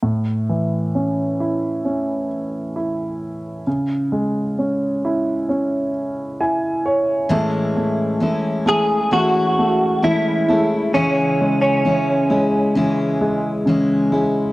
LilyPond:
<<
  \new Staff \with { instrumentName = "Clean electric guitar" } { \time 4/4 \key a \major \tempo 4 = 66 r1 | r1 | r4. gis'8 fis'4 e'4 | cis'8. cis'2~ cis'8. r8 | }
  \new Staff \with { instrumentName = "Steel-string acoustic guitar" } { \time 4/4 \key a \major r1 | r1 | <a, e gis cis' e'>4 <e gis cis' e'>8 <gis cis' e'>8 <e gis cis' e'>4 <e gis cis' e'>8 <gis cis' e'>8 | <cis e gis cis' e'>4 <e gis cis' e'>8 <gis cis' e'>8 <e gis cis' e'>4 <e gis cis' e'>8 <gis cis' e'>8 | }
  \new Staff \with { instrumentName = "Grand piano" } { \time 4/4 \key a \major r1 | r2. gis''8 cis''8 | r1 | r1 | }
  \new Staff \with { instrumentName = "Grand piano" } { \time 4/4 \key a \major a,8 e8 cis'8 e'8 cis'4 e'4 | cis8 gis8 cis'8 e'8 cis'4 e'4 | a8 a8 a8 a8 a8 a8 a8 a8 | cis8 gis8 cis8 gis8 cis8 gis8 cis8 gis8 | }
>>